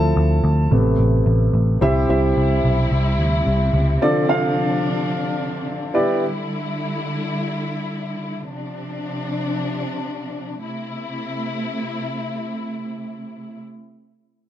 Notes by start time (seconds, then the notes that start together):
Already playing: D2 F3 C4 E4 A4 A5
0.16 D2
0.44 D2
0.71 A1 C3 A3 B3
0.99 A1
1.26 A1
1.54 A1
1.81 C2 C3 G3 C4 E4 G4 E5
2.09 C2 C4 E4 G4 E5
2.37 C2
2.64 B1
2.91 C2
3.19 D2
3.47 C2
3.74 C#2
4.02 D3 F3 C4 D4 F4 A4 D5
4.28 C4 F4 A4 F5
5.94 D3 G3 B3 E4 G4 D5
8.42 C3 F3 D4
10.63 C3 A3 E4